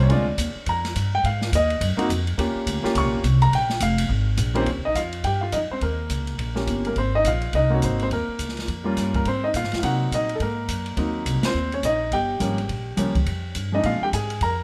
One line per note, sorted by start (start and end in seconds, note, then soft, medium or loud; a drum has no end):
0.00 0.10 A#3 medium
0.00 0.10 C#4 medium
0.00 0.11 C#5 medium
0.09 0.37 D2 medium
0.09 0.25 G#3 medium
0.09 0.25 C4 medium
0.09 0.26 D4 medium
0.09 0.26 F4 medium
0.09 0.54 D5 medium
0.09 kick soft
0.09 ride medium
0.38 0.54 D#2 loud
0.38 kick soft
0.38 hi-hat pedal medium
0.38 ride medium
0.55 muted upright bass stroke soft
0.66 0.94 F2 medium
0.66 1.11 A#5 medium
0.66 kick soft
0.66 ride medium
0.85 snare soft
0.85 ride medium
0.95 1.23 G2 medium
0.95 kick soft
0.95 hi-hat pedal medium
0.95 ride medium
1.15 1.25 G5 medium
1.23 1.51 G#2 medium
1.23 1.51 F5 medium
1.23 kick soft
1.23 ride medium
1.42 snare soft
1.52 1.80 D#2 medium
1.52 1.81 D#5 medium
1.52 kick soft
1.52 hi-hat pedal medium
1.52 ride medium
1.70 ride medium
1.81 1.96 F#2 loud
1.81 kick soft
1.81 ride medium
1.97 2.08 A#3 medium
1.97 2.08 C4 medium
1.97 2.08 D#4 medium
1.97 2.09 F#4 medium
1.97 muted upright bass stroke soft
1.97 ride medium
2.09 2.37 F2 loud
2.09 kick soft
2.09 hi-hat pedal medium
2.09 ride medium
2.27 ride soft
2.38 2.54 D#2 medium
2.38 2.80 A#3 medium
2.38 2.81 C#4 medium
2.38 2.81 F4 medium
2.38 2.81 G4 medium
2.38 kick soft
2.38 ride medium
2.55 muted upright bass stroke soft
2.66 2.83 D2 loud
2.66 kick soft
2.66 hi-hat pedal medium
2.66 ride medium
2.83 3.21 A#3 medium
2.83 3.21 C#4 medium
2.83 3.22 F4 medium
2.83 3.22 G4 medium
2.83 muted upright bass stroke soft
2.83 snare soft
2.95 3.05 C#2 loud
2.95 3.40 C#6 loud
2.95 kick soft
2.95 ride medium
3.05 3.13 A#1 medium
3.14 3.23 G1 medium
3.23 3.51 C2 loud
3.23 kick soft
3.23 hi-hat pedal soft
3.23 ride medium
3.42 3.52 A#5 loud
3.42 ride medium
3.52 3.80 A#1 medium
3.52 3.80 G5 medium
3.52 kick soft
3.52 ride medium
3.70 snare medium
3.80 4.08 F1 loud
3.80 4.08 F5 medium
3.80 kick soft
3.80 hi-hat pedal medium
3.80 ride medium
3.98 ride medium
4.09 4.37 G#1 medium
4.09 kick soft
4.37 4.66 A#1 loud
4.37 kick soft
4.37 hi-hat pedal medium
4.37 ride medium
4.54 4.65 D#3 medium
4.54 4.65 A#3 medium
4.54 4.67 C4 medium
4.54 4.65 C#4 medium
4.54 4.66 F4 medium
4.54 4.66 G4 medium
4.54 4.67 C5 medium
4.54 ride medium
4.66 4.78 D#2 medium
4.66 4.73 C#4 medium
4.66 4.72 C#5 medium
4.66 kick soft
4.66 ride medium
4.77 4.86 C#2 soft
4.85 4.94 A#1 medium
4.85 4.96 D#4 medium
4.85 4.95 D#5 medium
4.95 5.23 F2 medium
4.95 5.23 F4 medium
4.95 5.25 F5 medium
4.95 kick soft
4.95 hi-hat pedal soft
4.95 ride medium
5.13 ride soft
5.24 5.52 G2 medium
5.24 5.42 G4 medium
5.24 5.41 G5 medium
5.24 kick soft
5.24 ride medium
5.41 5.53 F4 medium
5.41 5.53 F5 medium
5.52 5.69 F2 medium
5.52 5.59 D#4 medium
5.52 5.58 D#5 medium
5.52 kick soft
5.52 hi-hat pedal medium
5.52 ride medium
5.70 5.82 C4 medium
5.70 5.81 C5 medium
5.70 muted upright bass stroke soft
5.81 6.09 D#2 medium
5.81 6.53 A#3 medium
5.81 6.64 A#4 medium
5.81 kick soft
5.81 ride medium
6.10 6.38 C#2 medium
6.10 kick soft
6.10 hi-hat pedal medium
6.10 ride medium
6.27 ride soft
6.38 6.66 A#1 medium
6.38 kick soft
6.38 ride medium
6.55 6.87 A#3 medium
6.55 6.93 C#4 medium
6.55 6.94 F4 medium
6.55 6.94 G4 medium
6.55 snare soft
6.67 6.95 G1 medium
6.67 kick soft
6.67 hi-hat pedal soft
6.67 ride medium
6.85 6.97 A#3 medium
6.85 6.96 A#4 medium
6.85 ride soft
6.96 7.24 G#1 medium
6.96 7.14 C4 medium
6.96 7.15 C5 medium
6.96 kick soft
6.96 ride soft
7.15 7.25 D#4 medium
7.15 7.25 D#5 medium
7.24 7.52 A#1 medium
7.24 7.53 F5 medium
7.24 kick soft
7.24 hi-hat pedal medium
7.24 ride medium
7.28 7.53 F4 medium
7.42 ride soft
7.53 7.81 C2 medium
7.53 7.69 D#4 medium
7.53 7.71 D#5 medium
7.53 kick soft
7.53 ride medium
7.70 8.08 A#3 medium
7.70 7.84 C4 medium
7.70 8.08 D#4 medium
7.70 8.09 F#4 medium
7.74 7.79 C#4 medium
7.74 7.78 C#5 medium
7.82 8.10 G#1 medium
7.82 8.00 C4 soft
7.82 7.99 C5 medium
7.82 kick soft
7.82 hi-hat pedal medium
7.82 ride medium
7.99 8.08 C4 medium
7.99 8.07 C5 medium
7.99 ride soft
8.11 8.27 D#2 medium
8.11 8.83 A#3 medium
8.11 8.94 A#4 medium
8.11 kick soft
8.11 ride medium
8.28 muted upright bass stroke soft
8.39 8.67 C#2 medium
8.39 kick soft
8.39 hi-hat pedal medium
8.39 ride medium
8.49 snare soft
8.57 snare soft
8.57 ride soft
8.68 8.96 F2 medium
8.68 kick soft
8.68 ride medium
8.84 9.22 G3 medium
8.84 9.15 A#3 medium
8.84 9.23 C#4 medium
8.84 9.23 F4 medium
8.96 9.24 G2 medium
8.96 kick soft
8.96 snare soft
8.96 hi-hat pedal medium
8.96 ride medium
9.14 9.26 A#3 medium
9.14 9.26 A#4 medium
9.14 kick soft
9.14 ride soft
9.25 9.53 G#2 medium
9.25 9.43 C4 medium
9.25 9.43 C5 medium
9.25 kick soft
9.25 ride medium
9.44 9.50 D#4 medium
9.44 9.49 D#5 medium
9.54 9.63 A#2 medium
9.54 9.77 F4 medium
9.54 9.77 F5 medium
9.54 kick soft
9.54 hi-hat pedal soft
9.54 ride medium
9.63 9.73 G#2 medium
9.63 snare soft
9.72 9.82 F#2 medium
9.72 snare soft
9.72 ride soft
9.79 10.10 C3 medium
9.79 10.25 F#3 medium
9.79 10.25 A#3 medium
9.79 10.25 C4 medium
9.79 9.83 F5 medium
9.79 kick soft
9.79 ride medium
9.83 10.13 D#4 medium
9.83 10.11 F#4 medium
9.83 10.13 F#5 medium
10.11 10.39 A#2 medium
10.11 10.35 D#4 medium
10.11 10.35 D#5 medium
10.11 kick soft
10.11 hi-hat pedal soft
10.11 ride medium
10.29 ride soft
10.35 10.40 A4 medium
10.40 10.68 G#2 medium
10.40 10.96 A#3 medium
10.40 11.23 A#4 medium
10.40 kick soft
10.40 ride medium
10.68 10.96 F#2 medium
10.68 kick soft
10.68 hi-hat pedal medium
10.68 ride medium
10.86 ride soft
10.97 11.25 D#2 medium
10.97 11.40 F#3 medium
10.97 11.40 A#3 medium
10.97 11.40 C4 medium
10.97 11.40 D#4 medium
10.97 kick soft
10.97 ride medium
11.26 11.42 C2 medium
11.26 kick soft
11.26 hi-hat pedal soft
11.26 ride medium
11.43 11.71 C5 medium
11.43 muted upright bass stroke soft
11.43 snare medium
11.43 ride medium
11.47 11.72 C4 medium
11.54 11.82 D#2 medium
11.72 11.84 C#4 medium
11.72 11.84 C#5 medium
11.72 ride soft
11.83 12.11 A#1 medium
11.83 12.11 D#4 medium
11.83 12.14 D#5 medium
11.83 kick soft
11.83 hi-hat pedal medium
11.83 ride medium
12.11 12.39 G1 medium
12.11 13.52 G4 medium
12.11 13.52 G5 medium
12.11 kick soft
12.11 ride medium
12.40 12.68 G#1 medium
12.40 12.56 F3 medium
12.40 12.56 G3 soft
12.40 12.56 A#3 medium
12.40 12.57 C#4 medium
12.40 kick soft
12.40 hi-hat pedal medium
12.40 ride medium
12.58 ride soft
12.69 12.97 A#1 medium
12.69 kick soft
12.69 ride medium
12.97 13.26 C#2 medium
12.97 13.13 F3 medium
12.97 13.13 G3 medium
12.97 13.14 A#3 medium
12.97 13.14 C#4 medium
12.97 kick soft
12.97 hi-hat pedal soft
12.97 ride medium
13.15 kick medium
13.15 ride soft
13.26 13.54 F2 medium
13.26 kick soft
13.26 ride medium
13.55 13.83 G2 medium
13.55 kick soft
13.55 hi-hat pedal medium
13.55 ride medium
13.72 14.10 F3 medium
13.72 14.10 G#3 medium
13.72 14.11 C4 soft
13.72 14.11 D4 medium
13.72 13.84 D#4 medium
13.72 13.85 D#5 medium
13.83 14.00 A#2 medium
13.83 14.02 F4 medium
13.83 14.01 F5 medium
13.83 kick soft
13.83 ride medium
14.01 14.09 G4 medium
14.01 14.08 G5 medium
14.01 muted upright bass stroke soft
14.13 14.40 G#2 medium
14.13 14.41 G#4 medium
14.13 14.40 G#5 medium
14.13 kick soft
14.13 hi-hat pedal medium
14.13 ride medium
14.30 ride soft
14.41 14.63 F2 medium
14.41 14.63 A#4 medium
14.41 14.63 A#5 medium
14.41 kick soft
14.41 ride medium